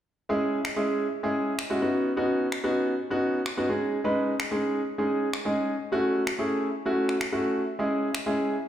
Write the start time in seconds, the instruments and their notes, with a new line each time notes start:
0.29 grand piano G#3 C#4 E4 G#4
0.65 finger snap
0.76 grand piano G#3 C#4 E4 G#4
1.23 grand piano G#3 C#4 E4 G#4
1.59 finger snap
1.70 grand piano G#3 C#4 E4 F#4
1.82 grand piano B3 C#4 D#4 F#4
2.17 grand piano B3 C#4 D#4 F#4
2.52 finger snap
2.64 grand piano B3 C#4 D#4 F#4
3.10 grand piano B3 C#4 D#4 F#4
3.46 finger snap
3.57 grand piano B3 C#4 D#4 F#4
3.69 grand piano G#3 C#4 D#4 G#4
4.04 grand piano G#3 C#4 D#4 B4
4.40 finger snap
4.51 grand piano G#3 C#4 D#4 G#4
4.98 grand piano G#3 C#4 D#4 G#4
5.33 finger snap
5.45 grand piano G#3 C#4 D#4 G#4
5.92 grand piano A3 C#4 E4 F#4
6.27 finger snap
6.39 grand piano A3 C#4 E4 G#4
6.86 grand piano A3 C#4 E4 F#4
7.09 finger snap
7.21 finger snap
7.32 grand piano A3 C#4 E4 F#4
7.79 grand piano G#3 C#4 E4 G#4
8.15 finger snap
8.26 grand piano G#3 C#4 E4 G#4